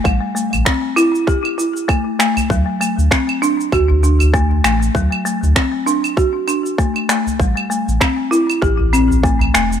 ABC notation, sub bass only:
X:1
M:4/4
L:1/16
Q:"Swing 16ths" 1/4=98
K:Ador
V:1 name="Sub bass" clef=bass
A,,, z2 A,,, z12 | D,, z2 D,, z4 D,,6 A,,,2 | D,, z2 D,, z12 | A,,, z2 A,,, z4 A,,,6 E,,,2 |]